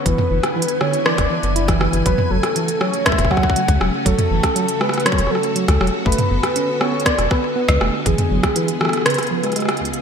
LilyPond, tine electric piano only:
\new Staff \with { instrumentName = "Tine electric piano" } { \clef bass \time 4/4 \key fis \minor \tempo 4 = 120 e16 r16 e16 r16 e16 r16 d16 r16 e16 r16 e16 r16 e'16 e16 e16 e16 | fis16 r16 fis16 r16 e16 r16 fis16 r16 gis16 r16 fis16 r16 fis16 r16 fis16 r16 | fis16 r16 e16 r16 fis16 r16 gis16 r16 fis16 r16 fis16 r16 fis16 r16 fis16 r16 | a16 r16 b16 r16 cis'16 r16 b16 r16 b16 r16 b16 r16 b16 r16 a16 r16 |
e16 r16 fis16 r16 e16 r16 e16 r16 cis16 r16 eis16 gis16 gis16 r16 cis,16 r16 | }